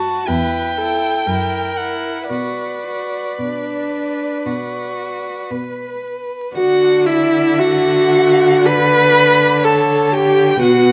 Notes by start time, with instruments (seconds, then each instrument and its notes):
Already playing: cello G2, violin F#4 A5, viola F#4
0.27 cello E2, violin E4 G5, viola B4
0.78 violin E4, viola A4
1.26 cello F#2, violin E4, viola A#4
1.77 violin E4 F#5
2.29 cello B2, violin F#4 D5, viola B4
2.87 violin F#4
3.39 cello B2, violin D4
4.46 cello B2, violin F#4
5.51 cello B2, violin B4
6.54 cello D3, viola F#4, violin D5 F#5
7.06 viola E4, violin E5
7.57 viola F#4, violin E5 F#5
8.63 viola B4, violin D5 B5
9.61 viola A4, violin C#5 A5
10.12 viola G4, violin G5
10.58 cello B2, viola F#4, violin B4
10.62 violin F#5